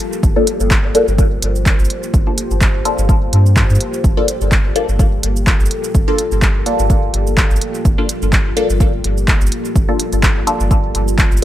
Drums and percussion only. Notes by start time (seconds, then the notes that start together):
0.13 shaker
0.23 kick, shaker
0.47 closed hi-hat, shaker
0.60 shaker
0.71 kick, clap, shaker
0.95 closed hi-hat, shaker
1.08 shaker
1.19 kick, shaker
1.42 closed hi-hat
1.55 shaker
1.66 kick, clap, shaker
1.79 shaker
1.85 shaker
1.90 closed hi-hat
2.03 shaker
2.14 kick, shaker
2.38 closed hi-hat, shaker
2.51 shaker
2.61 kick, clap, shaker
2.85 closed hi-hat, shaker
2.98 shaker
3.09 kick, shaker
3.33 closed hi-hat
3.46 shaker
3.57 kick, clap, shaker
3.70 shaker
3.75 shaker
3.81 closed hi-hat
3.94 shaker
4.04 kick, shaker
4.28 closed hi-hat, shaker
4.41 shaker
4.52 kick, clap, shaker
4.76 closed hi-hat, shaker
4.89 shaker
4.99 kick, shaker
5.23 closed hi-hat
5.36 shaker
5.47 kick, clap, shaker
5.60 shaker
5.66 shaker
5.71 closed hi-hat
5.84 shaker
5.95 kick, shaker
6.18 closed hi-hat, shaker
6.32 shaker
6.42 kick, clap, shaker
6.66 closed hi-hat, shaker
6.79 shaker
6.90 kick, shaker
7.14 closed hi-hat
7.27 shaker
7.38 kick, clap, shaker
7.51 shaker
7.56 shaker
7.61 closed hi-hat
7.74 shaker
7.85 kick, shaker
8.09 closed hi-hat, shaker
8.22 shaker
8.33 kick, clap, shaker
8.57 closed hi-hat, shaker
8.70 shaker
8.80 kick, shaker
9.04 closed hi-hat
9.17 shaker
9.28 kick, clap, shaker
9.41 shaker
9.47 shaker
9.52 closed hi-hat
9.65 shaker
9.76 kick, shaker
10.00 closed hi-hat, shaker
10.13 closed hi-hat, shaker
10.23 kick, clap, shaker
10.47 closed hi-hat, shaker
10.60 shaker
10.71 kick, shaker
10.95 closed hi-hat, shaker
11.08 shaker
11.18 kick, clap, shaker
11.32 shaker
11.37 shaker